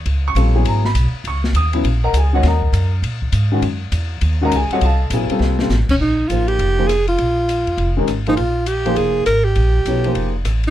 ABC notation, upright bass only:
X:1
M:4/4
L:1/8
Q:"Swing" 1/4=202
K:D#phr
V:1 name="Upright bass" clef=bass
C,,2 A,,,2 G,,,2 B,,, z | C,,2 D,,2 A,,,2 C,,2 | D,,2 F,,2 A,,2 G,,2 | F,,2 E,,2 D,,2 C,, z |
=C,,2 A,,, z C,,2 (3=A,,, =F,,, _E,,, | [K:Cphr] B,,,2 =A,,,2 F,,,4 | B,,,3 F,, F,,,2 A,,,2 | B,,,4 F,,,2 A,,,2 |
B,,,2 _C,,2 F,,,2 =A,,,2 |]